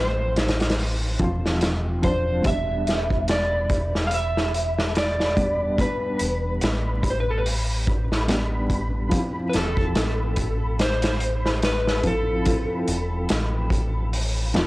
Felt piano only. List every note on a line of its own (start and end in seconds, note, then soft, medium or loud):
0.00 1.19 F3 medium
0.00 1.21 C4 medium
0.00 2.48 E4 medium
1.19 1.47 F3 medium
1.19 1.48 C4 medium
1.23 1.49 F4 medium
2.02 2.41 F3 medium
2.02 2.42 C4 medium
2.06 2.43 D4 medium
2.42 5.31 G3 medium
2.46 5.33 B3 medium
2.50 5.36 D4 medium
5.36 5.54 G3 medium
5.36 5.55 B3 medium
5.41 5.56 D4 medium
5.78 5.96 G3 medium
5.78 5.97 B3 medium
5.82 5.98 D4 medium
8.28 9.07 G3 medium
8.28 9.09 B3 medium
8.32 9.10 D4 medium
9.09 11.98 F3 medium
9.13 12.00 C4 medium
9.17 12.02 E4 medium
12.03 12.21 F3 medium
12.03 12.22 C4 medium
12.03 12.23 E4 medium
12.45 12.63 F3 medium
12.45 12.64 C4 medium
12.45 12.65 E4 loud
14.54 14.67 F3 medium
14.54 14.67 C4 medium
14.58 14.67 F4 medium